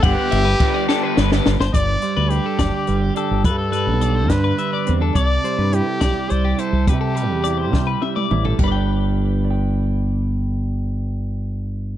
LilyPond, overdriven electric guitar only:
\new Staff \with { instrumentName = "Overdriven electric guitar" } { \time 6/8 \key g \major \tempo 4. = 70 <d g b d'>8 r8 <d g b d'>8 <d g b d'>8 <d g b d'>8 r8 | r2. | r2. | r2. |
r2. | r2. | r2. | }